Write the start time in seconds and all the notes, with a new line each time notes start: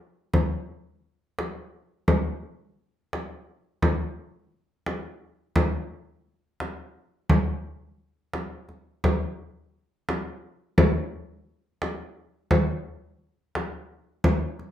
0.33 frame drum
1.39 frame drum
2.08 frame drum
3.13 frame drum
3.82 frame drum
4.86 frame drum
5.56 frame drum
6.60 frame drum
7.29 frame drum
8.34 frame drum
8.69 frame drum
9.04 frame drum
10.09 frame drum
10.78 frame drum
11.82 frame drum
12.51 frame drum
13.55 frame drum
14.24 frame drum
14.59 frame drum